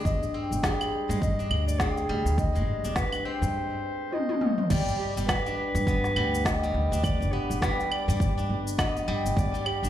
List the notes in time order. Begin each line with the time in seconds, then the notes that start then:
Already playing: G3 G#3 C4 D4
0.05 G1 D#5, kick, shaker
0.23 shaker
0.34 C4
0.51 G1, shaker
0.63 G3 G#4, kick, snare, shaker
0.81 claves, shaker
1.09 G2 G#3, shaker
1.21 D#5, kick, shaker
1.39 D4, shaker
1.50 D2, claves
1.67 D5, shaker
1.79 C4 G#4, kick, snare, shaker
1.97 shaker
2.09 D2 G3
2.25 D2, shaker
2.38 D#5, kick, shaker
2.55 G1 G#3, shaker
2.84 G1 D4, shaker
2.96 B4, kick, snare, shaker
3.12 claves, shaker
3.25 C4 C5
3.42 G2, shaker
4.12 D#5, high tom
4.29 high tom
4.41 mid tom
4.58 mid tom
4.70 G1 G3 D5 G5, kick, crash, shaker
4.88 shaker
4.99 G4
5.17 G1 G3, shaker
5.27 B4, kick, snare, claves, shaker
5.46 D4, shaker
5.56 B4
5.75 G2, shaker
5.87 B3, kick, shaker
6.04 snare, shaker
6.16 D2 G3, claves
6.35 shaker
6.45 D#5, kick, snare, shaker
6.63 G3, shaker
6.74 D2
6.91 D2 D4, shaker
7.03 D5, kick, claves, shaker
7.21 G1, shaker
7.32 B3 G4
7.50 G1, shaker
7.61 G3 B4, kick, snare, shaker
7.80 shaker
7.91 D5, claves
8.08 G2 G3, shaker
8.20 kick, shaker
8.38 D4, shaker
8.49 G1
8.67 shaker
8.78 B3 D#5, kick, snare, claves, shaker
8.97 shaker
9.08 G2 G3
9.25 G1, shaker
9.37 G1 D5, kick, shaker
9.54 G3, shaker
9.66 G4, claves
9.83 G1 D4, shaker